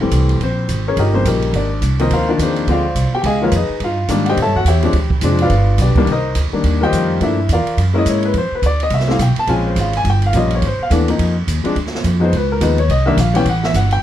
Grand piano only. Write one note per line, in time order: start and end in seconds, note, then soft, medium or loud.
0.01 0.38 E3 medium
0.01 0.38 G3 medium
0.01 0.38 A3 medium
0.01 0.39 C4 medium
0.43 0.84 C4 medium
0.43 0.84 C5 medium
0.88 0.98 C#4 medium
0.88 0.98 G#4 medium
0.88 0.98 A#4 medium
0.88 0.98 C#5 medium
0.99 1.15 D#4 medium
0.99 1.15 G4 medium
0.99 1.15 A#4 medium
0.99 1.15 D#5 medium
1.13 1.51 C#3 medium
1.13 1.51 F3 medium
1.13 1.51 G3 medium
1.13 1.26 A#3 medium
1.13 1.26 C4 medium
1.13 1.25 C5 loud
1.27 1.69 A#3 medium
1.27 1.69 D#4 medium
1.27 1.69 G4 medium
1.27 1.69 A#4 medium
1.56 1.97 D4 medium
1.56 1.97 D5 medium
1.99 2.26 D#3 medium
1.99 2.26 F3 medium
1.99 2.26 A#3 medium
1.99 2.27 C4 medium
1.99 2.11 D#4 medium
1.99 2.11 A#4 medium
1.99 2.11 C5 medium
1.99 2.11 D#5 medium
2.13 2.29 F4 medium
2.13 2.29 A#4 medium
2.13 2.29 C5 medium
2.13 2.29 F5 medium
2.29 2.66 D#3 medium
2.29 2.66 F3 medium
2.29 2.66 A#3 medium
2.29 2.66 D4 medium
2.29 2.40 D5 medium
2.38 2.39 B4 medium
2.42 2.67 C4 medium
2.42 2.70 F4 medium
2.42 2.84 G#4 medium
2.42 2.71 C5 medium
2.68 2.83 D3 medium
2.68 2.83 F3 medium
2.68 2.84 G#3 medium
2.68 2.84 C4 medium
2.68 3.12 F4 medium
2.68 3.12 F5 medium
2.72 3.12 C5 medium
2.72 3.12 D5 medium
3.15 3.25 G4 medium
3.15 3.20 G5 loud
3.21 3.24 G5 medium
3.25 3.42 G#4 medium
3.25 3.42 D#5 medium
3.25 3.42 F5 medium
3.25 3.42 G#5 loud
3.41 3.51 D#3 medium
3.41 3.52 F3 medium
3.41 3.52 G#3 medium
3.41 3.52 A#3 medium
3.41 3.53 F4 medium
3.41 3.53 B4 medium
3.41 3.53 C#5 medium
3.41 3.53 F5 medium
3.56 3.97 D#4 medium
3.56 3.81 G#4 medium
3.56 3.81 B4 medium
3.56 3.97 D#5 medium
3.84 4.25 F4 medium
3.84 4.25 F5 medium
4.09 4.37 D#3 medium
4.09 4.38 G3 medium
4.09 4.38 A#3 medium
4.09 4.38 D4 medium
4.29 4.39 G4 medium
4.29 4.39 C5 medium
4.29 4.39 D#5 medium
4.29 4.39 G5 loud
4.42 4.57 A4 medium
4.42 4.57 C#5 medium
4.42 4.57 E5 medium
4.42 4.57 A5 loud
4.56 4.66 F#4 medium
4.56 4.66 F#5 loud
4.68 5.10 G4 medium
4.68 4.94 C#5 medium
4.68 4.94 E5 medium
4.68 5.09 G5 medium
4.83 4.93 F3 medium
4.83 4.93 G#3 medium
4.83 4.94 C4 medium
4.83 4.94 D4 medium
5.23 5.51 F3 medium
5.23 5.51 G#3 medium
5.23 5.52 C4 medium
5.23 5.52 D4 medium
5.42 5.78 F4 medium
5.42 5.78 B4 medium
5.42 5.78 D5 medium
5.42 5.78 F5 loud
5.81 5.97 D4 medium
5.81 6.07 G4 medium
5.81 6.07 B4 medium
5.81 6.07 D5 medium
5.98 6.07 C2 medium
5.98 6.07 D#3 medium
5.98 6.08 G3 medium
5.98 6.07 A#3 medium
5.98 6.08 D4 medium
6.11 6.36 D#4 medium
6.11 6.36 A#4 medium
6.11 6.37 C5 medium
6.11 6.36 D#5 medium
6.53 6.79 D#3 medium
6.53 6.80 G3 medium
6.53 6.80 A#3 medium
6.53 6.80 D4 medium
6.81 7.19 D#3 medium
6.81 7.19 G3 medium
6.81 7.19 A#3 medium
6.81 7.19 F4 medium
6.81 7.20 G4 medium
6.81 7.20 C5 medium
6.81 7.20 D#5 medium
6.81 7.19 G5 loud
7.20 7.36 F3 medium
7.20 7.37 A3 medium
7.20 7.37 A#3 medium
7.20 7.37 D4 medium
7.20 7.49 E5 medium
7.24 7.49 E4 medium
7.53 7.78 F4 medium
7.53 7.78 A#4 medium
7.53 7.78 D5 medium
7.53 7.78 F5 medium
7.93 8.32 G#3 medium
7.93 8.32 A#3 medium
7.93 8.32 C#4 medium
7.93 8.33 E4 medium
7.98 8.08 D#5 medium
8.09 8.25 C#5 medium
8.25 8.35 B4 medium
8.38 8.53 C5 medium
8.55 8.65 B4 medium
8.66 8.81 D5 medium
8.83 8.93 D#5 medium
8.94 9.10 E5 medium
9.07 9.18 G3 medium
9.07 9.18 A3 medium
9.07 9.19 C4 medium
9.07 9.19 E4 medium
9.07 9.21 F5 medium
9.22 9.38 G5 medium
9.39 9.49 A5 loud
9.47 9.90 G#3 medium
9.47 9.91 C4 medium
9.47 9.91 C#4 medium
9.47 9.91 F4 medium
9.47 9.66 G#5 medium
9.67 9.77 C5 medium
9.80 9.95 F5 medium
9.97 10.06 G#5 loud
10.10 10.24 G5 medium
10.26 10.35 F5 loud
10.34 10.62 G3 medium
10.34 10.62 A#3 medium
10.34 10.63 C#4 medium
10.34 10.63 F4 medium
10.34 10.52 D#5 medium
10.55 10.64 C#5 medium
10.67 10.81 C5 medium
10.83 10.88 F5 medium
10.91 11.06 E3 medium
10.91 11.06 A3 medium
10.91 11.07 B3 medium
10.91 11.07 D4 medium
11.08 11.33 F3 medium
11.08 11.33 A#3 medium
11.08 11.34 C4 medium
11.08 11.34 D#4 medium
11.64 11.74 F3 medium
11.64 11.74 G#3 medium
11.64 11.75 C4 medium
11.64 11.75 D4 medium
12.20 12.30 F3 medium
12.20 12.31 G#3 medium
12.20 12.31 B3 medium
12.20 12.31 D#4 medium
12.25 12.34 C5 medium
12.36 12.51 B4 medium
12.52 12.61 A#4 medium
12.61 12.76 F3 medium
12.61 12.76 G#3 medium
12.61 12.76 B3 medium
12.61 12.77 D#4 medium
12.61 12.79 B4 medium
12.79 12.89 C#5 medium
12.91 13.07 D#5 medium
13.06 13.16 D#3 medium
13.06 13.16 G3 medium
13.06 13.17 A#3 medium
13.06 13.17 D4 medium
13.06 13.17 E5 loud
13.20 13.35 F5 medium
13.34 13.44 E3 medium
13.34 13.44 G3 medium
13.34 13.45 B3 medium
13.34 13.45 C#4 medium
13.34 13.46 G5 loud
13.49 13.64 F#5 medium
13.65 13.75 E5 loud
13.76 13.92 F#5 medium
13.92 14.03 G5 loud